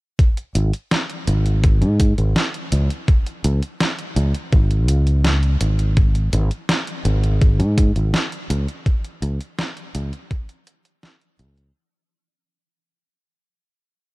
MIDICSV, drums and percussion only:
0, 0, Header, 1, 2, 480
1, 0, Start_track
1, 0, Tempo, 722892
1, 126, Time_signature, 4, 2, 24, 8
1, 9392, End_track
2, 0, Start_track
2, 0, Title_t, "Drums"
2, 126, Note_on_c, 9, 36, 118
2, 126, Note_on_c, 9, 42, 68
2, 193, Note_off_c, 9, 36, 0
2, 193, Note_off_c, 9, 42, 0
2, 248, Note_on_c, 9, 42, 39
2, 314, Note_off_c, 9, 42, 0
2, 367, Note_on_c, 9, 42, 92
2, 433, Note_off_c, 9, 42, 0
2, 488, Note_on_c, 9, 42, 39
2, 554, Note_off_c, 9, 42, 0
2, 607, Note_on_c, 9, 38, 117
2, 607, Note_on_c, 9, 42, 68
2, 673, Note_off_c, 9, 38, 0
2, 673, Note_off_c, 9, 42, 0
2, 727, Note_on_c, 9, 42, 40
2, 794, Note_off_c, 9, 42, 0
2, 846, Note_on_c, 9, 42, 92
2, 912, Note_off_c, 9, 42, 0
2, 967, Note_on_c, 9, 42, 39
2, 1033, Note_off_c, 9, 42, 0
2, 1086, Note_on_c, 9, 42, 66
2, 1087, Note_on_c, 9, 36, 116
2, 1152, Note_off_c, 9, 42, 0
2, 1153, Note_off_c, 9, 36, 0
2, 1206, Note_on_c, 9, 42, 40
2, 1273, Note_off_c, 9, 42, 0
2, 1326, Note_on_c, 9, 42, 92
2, 1327, Note_on_c, 9, 36, 92
2, 1392, Note_off_c, 9, 42, 0
2, 1393, Note_off_c, 9, 36, 0
2, 1448, Note_on_c, 9, 42, 40
2, 1514, Note_off_c, 9, 42, 0
2, 1567, Note_on_c, 9, 38, 112
2, 1567, Note_on_c, 9, 42, 65
2, 1633, Note_off_c, 9, 38, 0
2, 1633, Note_off_c, 9, 42, 0
2, 1688, Note_on_c, 9, 42, 40
2, 1755, Note_off_c, 9, 42, 0
2, 1806, Note_on_c, 9, 42, 93
2, 1872, Note_off_c, 9, 42, 0
2, 1928, Note_on_c, 9, 42, 39
2, 1995, Note_off_c, 9, 42, 0
2, 2046, Note_on_c, 9, 36, 114
2, 2047, Note_on_c, 9, 42, 64
2, 2112, Note_off_c, 9, 36, 0
2, 2113, Note_off_c, 9, 42, 0
2, 2168, Note_on_c, 9, 42, 37
2, 2234, Note_off_c, 9, 42, 0
2, 2286, Note_on_c, 9, 42, 96
2, 2353, Note_off_c, 9, 42, 0
2, 2407, Note_on_c, 9, 42, 40
2, 2474, Note_off_c, 9, 42, 0
2, 2526, Note_on_c, 9, 38, 118
2, 2526, Note_on_c, 9, 42, 71
2, 2593, Note_off_c, 9, 38, 0
2, 2593, Note_off_c, 9, 42, 0
2, 2647, Note_on_c, 9, 42, 41
2, 2713, Note_off_c, 9, 42, 0
2, 2765, Note_on_c, 9, 42, 92
2, 2831, Note_off_c, 9, 42, 0
2, 2885, Note_on_c, 9, 42, 42
2, 2951, Note_off_c, 9, 42, 0
2, 3004, Note_on_c, 9, 42, 64
2, 3005, Note_on_c, 9, 36, 127
2, 3070, Note_off_c, 9, 42, 0
2, 3071, Note_off_c, 9, 36, 0
2, 3125, Note_on_c, 9, 42, 39
2, 3192, Note_off_c, 9, 42, 0
2, 3243, Note_on_c, 9, 42, 88
2, 3309, Note_off_c, 9, 42, 0
2, 3365, Note_on_c, 9, 42, 39
2, 3431, Note_off_c, 9, 42, 0
2, 3483, Note_on_c, 9, 38, 116
2, 3483, Note_on_c, 9, 42, 65
2, 3549, Note_off_c, 9, 38, 0
2, 3549, Note_off_c, 9, 42, 0
2, 3604, Note_on_c, 9, 42, 42
2, 3670, Note_off_c, 9, 42, 0
2, 3723, Note_on_c, 9, 42, 94
2, 3789, Note_off_c, 9, 42, 0
2, 3845, Note_on_c, 9, 42, 39
2, 3911, Note_off_c, 9, 42, 0
2, 3963, Note_on_c, 9, 42, 67
2, 3964, Note_on_c, 9, 36, 118
2, 4029, Note_off_c, 9, 42, 0
2, 4030, Note_off_c, 9, 36, 0
2, 4084, Note_on_c, 9, 42, 36
2, 4150, Note_off_c, 9, 42, 0
2, 4202, Note_on_c, 9, 42, 89
2, 4269, Note_off_c, 9, 42, 0
2, 4322, Note_on_c, 9, 42, 38
2, 4389, Note_off_c, 9, 42, 0
2, 4442, Note_on_c, 9, 38, 127
2, 4442, Note_on_c, 9, 42, 69
2, 4509, Note_off_c, 9, 38, 0
2, 4509, Note_off_c, 9, 42, 0
2, 4564, Note_on_c, 9, 42, 42
2, 4630, Note_off_c, 9, 42, 0
2, 4682, Note_on_c, 9, 42, 92
2, 4748, Note_off_c, 9, 42, 0
2, 4804, Note_on_c, 9, 42, 37
2, 4871, Note_off_c, 9, 42, 0
2, 4923, Note_on_c, 9, 42, 66
2, 4924, Note_on_c, 9, 36, 127
2, 4990, Note_off_c, 9, 36, 0
2, 4990, Note_off_c, 9, 42, 0
2, 5045, Note_on_c, 9, 42, 42
2, 5111, Note_off_c, 9, 42, 0
2, 5164, Note_on_c, 9, 36, 102
2, 5164, Note_on_c, 9, 42, 96
2, 5230, Note_off_c, 9, 36, 0
2, 5230, Note_off_c, 9, 42, 0
2, 5285, Note_on_c, 9, 42, 38
2, 5351, Note_off_c, 9, 42, 0
2, 5404, Note_on_c, 9, 38, 122
2, 5404, Note_on_c, 9, 42, 67
2, 5470, Note_off_c, 9, 38, 0
2, 5470, Note_off_c, 9, 42, 0
2, 5526, Note_on_c, 9, 42, 39
2, 5592, Note_off_c, 9, 42, 0
2, 5646, Note_on_c, 9, 42, 96
2, 5712, Note_off_c, 9, 42, 0
2, 5767, Note_on_c, 9, 42, 38
2, 5833, Note_off_c, 9, 42, 0
2, 5884, Note_on_c, 9, 36, 114
2, 5886, Note_on_c, 9, 42, 61
2, 5950, Note_off_c, 9, 36, 0
2, 5953, Note_off_c, 9, 42, 0
2, 6006, Note_on_c, 9, 42, 37
2, 6072, Note_off_c, 9, 42, 0
2, 6124, Note_on_c, 9, 42, 91
2, 6191, Note_off_c, 9, 42, 0
2, 6246, Note_on_c, 9, 42, 40
2, 6312, Note_off_c, 9, 42, 0
2, 6365, Note_on_c, 9, 38, 125
2, 6365, Note_on_c, 9, 42, 67
2, 6432, Note_off_c, 9, 38, 0
2, 6432, Note_off_c, 9, 42, 0
2, 6486, Note_on_c, 9, 42, 38
2, 6552, Note_off_c, 9, 42, 0
2, 6605, Note_on_c, 9, 42, 92
2, 6671, Note_off_c, 9, 42, 0
2, 6726, Note_on_c, 9, 42, 38
2, 6792, Note_off_c, 9, 42, 0
2, 6845, Note_on_c, 9, 36, 127
2, 6845, Note_on_c, 9, 42, 63
2, 6911, Note_off_c, 9, 36, 0
2, 6912, Note_off_c, 9, 42, 0
2, 6966, Note_on_c, 9, 42, 40
2, 7032, Note_off_c, 9, 42, 0
2, 7085, Note_on_c, 9, 42, 88
2, 7151, Note_off_c, 9, 42, 0
2, 7205, Note_on_c, 9, 42, 39
2, 7271, Note_off_c, 9, 42, 0
2, 7325, Note_on_c, 9, 38, 122
2, 7325, Note_on_c, 9, 42, 61
2, 7391, Note_off_c, 9, 38, 0
2, 7391, Note_off_c, 9, 42, 0
2, 7446, Note_on_c, 9, 42, 40
2, 7513, Note_off_c, 9, 42, 0
2, 7564, Note_on_c, 9, 42, 97
2, 7631, Note_off_c, 9, 42, 0
2, 7686, Note_on_c, 9, 42, 38
2, 7752, Note_off_c, 9, 42, 0
2, 9392, End_track
0, 0, End_of_file